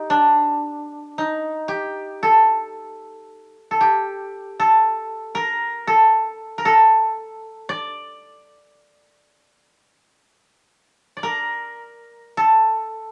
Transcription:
Already playing: D#4 G4 A4
0.10 D4
1.18 D#4
1.68 G4
2.23 A4
3.71 A4
3.81 G4
4.60 A4
5.35 A#4
5.87 A4
6.58 A#4
6.65 A4
7.69 D5
11.17 D5
11.23 A#4
12.37 A4

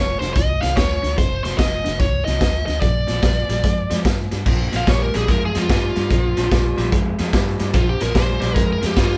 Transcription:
Already playing: F1 F2 D3 C#5
0.19 F1 F2 D3 C5, snare, closed hi-hat
0.34 C2 F2 D#3 D#5, kick, snare, closed hi-hat
0.61 C2 F2 D#3 F5, snare, closed hi-hat
0.76 D2 F2 D3 C#5, kick, snare, closed hi-hat
1.02 D2 F2 D3, snare, closed hi-hat
1.17 F1 F2 C3 C5, kick, snare, closed hi-hat
1.43 F1 F2 C3 C5, snare, closed hi-hat
1.58 F1 F2 D3 D#5, kick, snare, closed hi-hat
1.84 F1 F2 D3, snare, closed hi-hat
2.00 C2 F2 D#3 C#5, kick, snare, closed hi-hat
2.25 C2 F2 D#3 D#5, snare, closed hi-hat
2.40 D2 F2 D3, kick, snare, closed hi-hat
2.66 D2 F2 D3 D#5, snare, closed hi-hat
2.81 A#1 A#2 F3 D5, kick, snare, closed hi-hat
3.07 A#1 A#2 F3, snare, closed hi-hat
3.22 A#1 A#2 G3, kick, snare, closed hi-hat
3.49 A#1 A#2 G3, snare, closed hi-hat
3.63 F2 A#2 G#3, kick, snare, closed hi-hat
3.90 F2 A#2 G#3, snare, closed hi-hat
4.05 G2 A#2 G3, kick, snare, closed hi-hat
4.31 G2 A#2 G3, snare, closed hi-hat
4.46 A#1 A#2 F3, kick, snare, crash
4.72 A#1 A#2 F3 F5, snare, closed hi-hat
4.87 A#1 A#2 G3 C#5, kick, snare, closed hi-hat
5.02 A#4
5.14 A#1 A#2 G3 G#4, snare, closed hi-hat
5.28 F2 A#2 G#3 A#4, kick, snare, closed hi-hat
5.45 G#4
5.55 F2 A#2 G#3 F4, snare, closed hi-hat
5.69 G2 A#2 G3 F4, kick, snare, closed hi-hat
5.96 G2 A#2 G3, snare, closed hi-hat
6.10 A#1 A#2 F3, kick, snare, closed hi-hat
6.37 A#1 A#2 F3, snare, closed hi-hat
6.51 A#1 A#2 G3, kick, snare, closed hi-hat
6.77 A#1 A#2 G3, snare, closed hi-hat
6.92 F2 A#2 G#3, kick, snare, closed hi-hat
7.18 F2 A#2 G#3, snare, closed hi-hat
7.33 G2 A#2 G3, kick, snare, closed hi-hat
7.59 G2 A#2 G3, snare, closed hi-hat
7.74 A#1 A#2 F3 F4, kick, snare, closed hi-hat
7.89 G4
8.00 A#1 A#2 F3 A#4, snare, closed hi-hat
8.15 A#1 A#2 G3 C5, kick, snare, closed hi-hat
8.40 A#1 A#2 G3, snare, closed hi-hat
8.55 F2 A#2 G#3 A#4, kick, snare, closed hi-hat
8.73 A#4
8.81 F2 A#2 G#3, snare, closed hi-hat
8.86 G4
8.96 G2 A#2 G3 F4, kick, snare, closed hi-hat

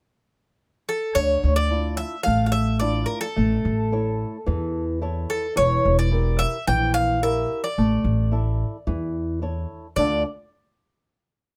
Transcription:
0.89 A4
1.15 D2 D3 C#5
1.44 D2
1.56 D5
1.70 D4 E4 F4
1.97 E5
2.23 A3 F5
2.27 A1
2.46 F5
2.52 E5
2.79 D4 E4 F4 D5
3.06 A#4
3.21 A4
3.36 A1 A3
3.65 A1
3.92 E4 A4 C#5
4.46 E2 E3
5.02 E4 A4 C#5
5.30 A4
5.56 E1 E3 C#5
5.85 E1
5.99 D5
6.11 E4 G4 A#4
6.39 E5
6.67 A#1 E3 G5
6.94 F5
7.22 E4 G4 A#4 E5
7.64 D5
7.78 A1 A3
8.04 A1
8.32 E4 A4 E5
8.87 E2 E3
9.42 E4 A4 C#5
9.96 D2 D3 A3 D4 F4 A4 D5

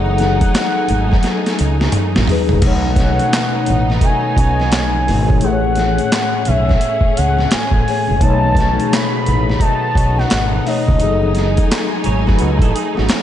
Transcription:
Already playing: F#1 F#3 A3 D#4 G#4 A4 F#5 G#5
0.06 high conga
0.18 snare, closed hi-hat, high conga
0.40 kick, closed hi-hat, high conga
0.54 snare, clap, closed hi-hat, muted conga
0.74 muted conga
0.88 G#1, closed hi-hat, low conga
1.12 kick, snare
1.23 snare, closed hi-hat
1.44 snare, closed hi-hat, muted conga
1.59 C#2, closed hi-hat
1.79 snare, high conga
1.92 muted fretless electric bass stroke, closed hi-hat, mid tom
2.15 A1, snare, muted conga, high conga
2.27 F#3 D#4 G#4, floor tom, open hi-hat
2.32 B4
2.49 floor tom, low conga
2.53 F#1
2.62 B1 B2 A3 B3 D#4 F#5, kick, closed hi-hat, crash
2.67 C#5
2.86 high conga
2.96 C#3 F#3 A3 C#4, kick, snare, closed hi-hat, high conga
3.19 B2 A3 C#4, closed hi-hat, high conga
3.24 C#5
3.28 D#4
3.33 snare, clap, closed hi-hat, muted conga
3.54 muted conga
3.66 A1, closed hi-hat, high conga, low conga
3.90 snare
4.01 D#3 F#3 A3 D#4 G#5, kick, closed hi-hat, muted conga
4.36 B1 F#3 C#4 D#4 F#4, kick, closed hi-hat
4.58 snare, high conga
4.72 snare, clap, closed hi-hat, muted conga
4.95 high conga
5.06 G#1 B2 A3 D#4, open hi-hat
5.11 C#5
5.28 kick, low conga
5.41 A1 A2 A3 C#4 G#4 F#5, closed hi-hat
5.45 B4
5.52 C#5
5.64 high conga
5.75 snare, closed hi-hat, high conga
5.98 closed hi-hat, high conga
6.12 snare, clap, closed hi-hat, muted conga
6.32 muted conga
6.45 B1 E5, closed hi-hat, high conga, low conga
6.69 kick, snare
6.81 closed hi-hat
7.01 kick, muted conga
7.17 C#2 F#5, closed hi-hat
7.37 snare, high conga
7.51 G#5, muted fretless electric bass stroke, snare, clap, closed hi-hat
7.71 A1, kick, high conga
7.85 A2 A3 G#4, open hi-hat
7.90 C#5
8.07 F#1, low conga
8.20 B1 B2 A3 B3 D#4 A5, kick, closed hi-hat, muted conga
8.25 C#5
8.44 high conga
8.55 C#3 F#3 A3 C#4, kick, snare, closed hi-hat, high conga
8.77 B2 A3 D#4, closed hi-hat, high conga
8.82 G#4
8.92 B5, snare, clap, closed hi-hat, muted conga
9.12 muted conga
9.26 A1, closed hi-hat, high conga, low conga
9.50 snare
9.59 D#3 F#3 A3 D#4 A5, kick, closed hi-hat, muted conga
9.95 B1 F#3 C#4 D#4 F#4, kick, closed hi-hat
10.17 F#5, snare, high conga
10.30 G#1, snare, clap, closed hi-hat, muted conga
10.53 high conga
10.64 B2 A3 D#4 D#5, open hi-hat
10.69 C#5
10.86 C#2, kick, low conga
10.99 F#1 F#3 A3 D#4 G#4 G#5, closed hi-hat, low conga
11.04 A4
11.22 muted conga, high conga
11.35 snare, closed hi-hat, high conga
11.57 kick, closed hi-hat, high conga
11.71 snare, clap, closed hi-hat, muted conga
11.90 muted conga
12.04 G#1 G#4 C#5, closed hi-hat, high conga, low conga
12.27 F#4 B4, kick, snare
12.38 C#2, closed hi-hat, muted conga
12.59 A1 D#4 A4, kick, closed hi-hat, muted conga
12.75 D#4 G#4, closed hi-hat
12.95 G#1 C#4 F#4, snare, high conga
13.09 muted fretless electric bass stroke, snare, clap, closed hi-hat

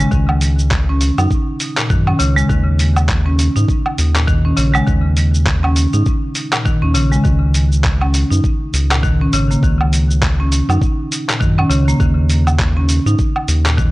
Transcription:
0.12 C#2 D#3, kick, cabasa
0.29 low woodblock
0.41 open hi-hat, cabasa
0.59 cabasa
0.71 kick, clap, cabasa
0.89 C#4
1.01 open hi-hat, cabasa
1.18 F#2 D#4, cabasa, low woodblock
1.31 kick, cabasa
1.60 open hi-hat, cabasa
1.77 A#2, clap, cabasa
1.90 F#2 D#3, kick, cabasa
2.07 C#4, low woodblock
2.19 C#2 C#3, open hi-hat, cabasa
2.36 G#3, cabasa
2.49 D#2 D#3, kick, cabasa
2.79 open hi-hat, cabasa
2.96 cabasa, low woodblock
3.09 kick, clap, cabasa
3.26 C#4
3.39 open hi-hat, cabasa
3.56 G#2 D#4, cabasa
3.68 kick, cabasa
3.86 low woodblock
3.98 D#2, open hi-hat, cabasa
4.16 A#2, clap, cabasa
4.28 D#3, kick, cabasa
4.45 C#4
4.57 A#1 C#3, open hi-hat, cabasa
4.74 G#3, cabasa, low woodblock
4.86 D#2 D#3, kick, cabasa
5.17 open hi-hat, cabasa
5.35 cabasa
5.47 kick, clap, cabasa
5.63 C#4, low woodblock
5.76 open hi-hat, cabasa
5.93 G#2 D#4, cabasa
6.06 kick, cabasa
6.35 open hi-hat, cabasa
6.53 A#2, clap, cabasa, low woodblock
6.65 D#3, kick, cabasa
6.82 D#2 C#4
6.94 A#1 C#3, open hi-hat, cabasa
7.12 G#3, cabasa
7.24 C#2 D#3, kick, cabasa
7.54 open hi-hat, cabasa
7.72 cabasa
7.84 kick, clap, cabasa
8.01 C#4, low woodblock
8.14 open hi-hat, cabasa
8.31 F#2 D#4, cabasa
8.44 kick, cabasa
8.73 C#2, open hi-hat, cabasa
8.91 A#2, clap, cabasa, low woodblock
9.03 D#3, kick, cabasa
9.21 C#4
9.33 G#1 C#3, open hi-hat, cabasa
9.51 A#3, cabasa
9.63 C#2 D#3, kick, cabasa
9.81 low woodblock
9.93 open hi-hat, cabasa
10.11 cabasa
10.22 kick, clap, cabasa
10.40 C#4
10.52 open hi-hat, cabasa
10.69 F#2 D#4, cabasa, low woodblock
10.81 kick, cabasa
11.12 open hi-hat, cabasa
11.28 A#2, clap, cabasa
11.40 F#2 D#3, kick, cabasa
11.58 C#4, low woodblock
11.70 C#2 C#3, open hi-hat, cabasa
11.88 A#3, cabasa
12.00 D#2 D#3, kick, cabasa
12.30 open hi-hat, cabasa
12.47 cabasa, low woodblock
12.59 kick, clap, cabasa
12.77 C#4
12.89 open hi-hat, cabasa
13.06 G#2 D#4, cabasa
13.19 kick, cabasa
13.36 low woodblock
13.48 D#2, open hi-hat, cabasa
13.66 A#2, clap, cabasa
13.78 D#3, kick, cabasa

